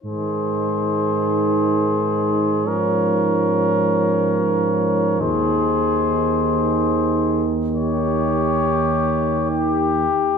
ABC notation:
X:1
M:3/4
L:1/8
Q:1/4=70
K:Ab
V:1 name="Trumpet"
c6 | d6 | c4- c z | d4 G2 |]
V:2 name="Trumpet"
A6 | B6 | A4- A z | G4- G z |]
V:3 name="French horn"
E6 | D6 | E6- | E4- E z |]
V:4 name="Euphonium" clef=bass
E,6 | F,6 | E,6- | E,4- E, z |]
V:5 name="Tuba" clef=bass
A,,6- | A,,6 | E,,6- | E,,4- E,, z |]